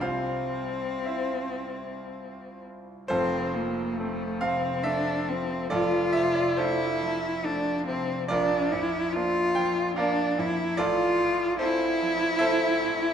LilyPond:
<<
  \new Staff \with { instrumentName = "Grand piano" } { \time 3/4 \key f \major \tempo 4 = 70 <f' c'' f''>4 <e' c'' e''>4. r8 | <f' a' c''>4. f''8 e''4 | <f' a' d''>8 e''16 d''16 <f' a' c''>4. r8 | <f' bes' d''>4. g''8 <bes' d'' f''>4 |
<f' a' d''>4 <f' a' c''>4 <a' c'' e''>4 | }
  \new Staff \with { instrumentName = "Grand piano" } { \clef bass \time 3/4 \key f \major <c, c g c'>2. | <f,, f,>8 f8 <a c'>8 c8 <a c'>8 f8 | <f,, f,>8 c8 <a d'>8 f8 <a d'>8 c8 | bes,,8 f,8 <bes d'>8 f8 <bes d'>8 f,8 |
a,,8 a,8 c'8 f8 <c' f'>8 a,8 | }
  \new Staff \with { instrumentName = "Cello" } { \time 3/4 \key f \major c'2~ c'8 r8 | c'8 bes8 a8 c'8 d'8 c'8 | f'4 e'4 d'8 c'8 | d'8 e'8 f'4 d'8 e'8 |
f'4 e'2 | }
>>